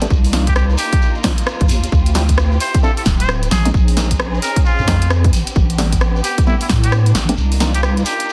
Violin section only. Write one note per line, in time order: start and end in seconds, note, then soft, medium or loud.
0.00 1.88 D4 medium
0.10 1.90 A#3 medium
0.10 1.90 D#4 medium
0.10 3.48 F4 medium
1.92 7.34 C4 medium
1.92 3.50 E4 medium
1.92 3.50 G4 medium
3.51 5.31 C#4 medium
3.51 5.31 D#4 medium
3.51 5.31 G#4 medium
5.33 7.36 B3 medium
5.33 8.33 D4 medium
5.33 7.36 G4 medium
7.38 8.33 A#3 medium
7.38 8.33 D#4 medium
7.38 8.33 F4 medium